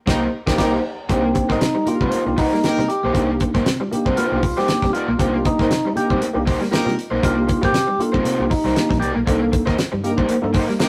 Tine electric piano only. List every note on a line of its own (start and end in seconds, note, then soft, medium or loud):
0.07 0.25 A#3 medium
0.07 0.26 D#4 medium
0.07 0.26 G4 medium
0.46 0.57 A#3 loud
0.46 0.57 D#4 loud
0.46 0.57 G4 loud
0.58 0.76 A#3 medium
0.58 0.77 D#4 loud
0.58 0.77 G4 medium
1.10 1.45 A#3 medium
1.10 1.45 D4 medium
1.10 1.45 D#4 medium
1.10 1.45 G4 medium
1.75 1.81 D#4 soft
1.75 1.81 A4 soft
1.86 2.02 A#3 medium
1.86 2.02 D4 medium
1.86 2.02 D#4 medium
1.86 2.02 G4 medium
2.12 2.19 D#4 soft
2.12 2.20 G4 soft
2.26 2.32 A#3 medium
2.26 2.32 D4 medium
2.26 2.33 D#4 medium
2.26 2.33 G4 loud
2.37 2.44 D#4 soft
2.37 2.45 G4 soft
2.62 2.84 A#3 medium
2.62 2.84 D4 medium
2.62 2.84 D#4 medium
2.62 2.85 G4 medium
3.03 3.09 D#4 soft
3.03 3.09 G4 soft
3.14 3.49 A#3 medium
3.14 3.50 D4 medium
3.14 3.50 D#4 medium
3.14 3.50 G4 loud
3.81 3.86 D#4 soft
3.81 3.86 F4 soft
3.91 4.06 A#3 medium
3.91 4.07 D4 medium
3.91 4.07 D#4 medium
3.91 4.07 G4 loud
4.17 4.24 D#4 soft
4.17 4.25 G4 soft
4.31 4.37 A#3 loud
4.31 4.38 D4 medium
4.31 4.38 D#4 medium
4.31 4.38 G4 loud
4.43 4.50 D#4 soft
4.43 4.50 G4 soft
4.67 4.89 A#3 medium
4.67 4.89 D4 medium
4.67 4.89 D#4 medium
4.67 4.89 G4 medium
5.08 5.14 D#4 soft
5.08 5.14 F4 soft
5.19 5.54 A#3 loud
5.19 5.54 D4 medium
5.19 5.54 D#4 medium
5.19 5.54 G4 loud
5.84 5.90 D#4 soft
5.84 5.90 G4 soft
5.95 6.10 A#3 medium
5.95 6.10 D4 medium
5.95 6.11 D#4 medium
5.95 6.11 G4 medium
6.33 6.41 A#3 loud
6.33 6.41 D4 loud
6.33 6.41 D#4 medium
6.33 6.41 G4 loud
6.46 6.53 D#4 soft
6.46 6.54 G4 soft
6.71 6.93 A#3 medium
6.71 6.93 D4 medium
6.71 6.93 D#4 medium
6.71 6.93 F4 medium
7.11 7.17 D#4 soft
7.11 7.17 G4 soft
7.22 7.57 A#3 medium
7.22 7.58 D4 medium
7.22 7.58 D#4 medium
7.22 7.58 G4 loud
7.88 7.94 D#4 soft
7.88 7.94 G4 soft
8.00 8.15 A#3 medium
8.00 8.15 D4 medium
8.00 8.15 D#4 medium
8.00 8.15 A4 medium
8.25 8.32 D#4 soft
8.25 8.33 G4 soft
8.39 8.45 A#3 medium
8.39 8.46 D4 medium
8.39 8.46 D#4 medium
8.39 8.46 G4 loud
8.76 8.97 A#3 medium
8.76 8.97 D4 medium
8.76 8.98 D#4 medium
8.76 8.98 G4 medium
9.16 9.22 D#4 soft
9.16 9.22 A4 soft
9.27 9.62 A#3 loud
9.27 9.62 D4 medium
9.27 9.62 D#4 medium
9.27 9.63 A4 loud
9.92 9.98 D#4 soft
9.92 9.99 G4 soft
10.04 10.19 A#3 loud
10.04 10.19 D4 medium
10.04 10.19 D#4 medium
10.04 10.19 G4 loud
10.29 10.36 D#4 soft
10.29 10.37 A#4 soft
10.42 10.49 A#3 loud
10.42 10.49 D4 loud
10.42 10.49 D#4 loud
10.42 10.49 A4 loud
10.54 10.61 D#4 soft
10.54 10.62 G4 soft
10.80 10.89 A#3 medium
10.80 10.89 D4 medium
10.80 10.89 D#4 medium
10.80 10.89 A#4 medium